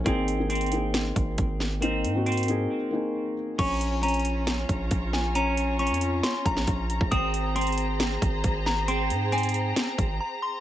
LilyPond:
<<
  \new Staff \with { instrumentName = "Synth bell" } { \time 4/4 \key bes \minor \tempo 4 = 136 r1 | r1 | des'''4 bes''4 r4. aes''8 | bes''4 des'''4 c'''8 bes''4. |
ees'''4 c'''4 r4. bes''8 | c'''4 aes''2 bes''8 c'''8 | }
  \new Staff \with { instrumentName = "String section" } { \time 4/4 \key bes \minor << { r1 | r1 | bes''1~ | bes''1~ |
bes''1~ | bes''1 | } \\ { r1 | r1 | <f' des''>1~ | <f' des''>1 |
<aes' c''>1~ | <aes' c''>1 | } >> }
  \new Staff \with { instrumentName = "Felt piano" } { \time 4/4 \key bes \minor <bes c' ees' aes'>8 r16 <bes c' ees' aes'>8 r16 <bes c' ees' aes'>4~ <bes c' ees' aes'>16 r4 r16 | <bes c' ees' bes'>8 r16 <bes c' ees' ges'>8 r16 <bes c' ees' aes'>8. r16 <bes c' ees' aes'>4 r8 | r1 | r1 |
r1 | r1 | }
  \new Staff \with { instrumentName = "Clean electric guitar" } { \time 4/4 \key bes \minor c'4 c'2. | c'4 c'2. | des'4 des'2. | des'4 des'2. |
c'4 c'2. | c'4 c'2. | }
  \new Staff \with { instrumentName = "808-style bass" } { \clef bass \time 4/4 \key bes \minor aes,,2~ aes,,8 aes,,8 aes,,4~ | aes,,8 aes,4. r2 | bes,,2~ bes,,8 bes,,8 bes,,4~ | bes,,4~ bes,,16 f,8. r8 bes,,8 bes,,8. bes,,16 |
aes,,2~ aes,,8 aes,,8 aes,,4~ | aes,,8 aes,4. r8 aes,,8 r4 | }
  \new DrumStaff \with { instrumentName = "Drums" } \drummode { \time 4/4 <hh bd>8 hh8 hh32 hh32 hh32 hh32 hh8 <hh sn>8 <hh bd>8 <hh bd>8 sn8 | hh8 hh8 hh32 hh32 hh32 hh32 hh8 r4 r4 | <cymc hh bd>8 hh8 hh32 hh32 hh32 hh32 hh8 <hh sn>8 <hh bd>8 <hh bd>8 sn8 | hh8 hh8 \tuplet 3/2 { hh16 hh16 hh16 hh16 r16 r16 } <hh sn>8 <hh bd>16 sn16 <hh bd>8 hh16 bd16 |
<hh bd>8 hh8 hh32 hh32 hh32 hh32 hh8 <hh sn>8 <hh bd>8 <hh bd>8 sn8 | hh8 hh8 hh32 hh32 hh32 hh32 hh8 <hh sn>8 <hh bd>8 r4 | }
>>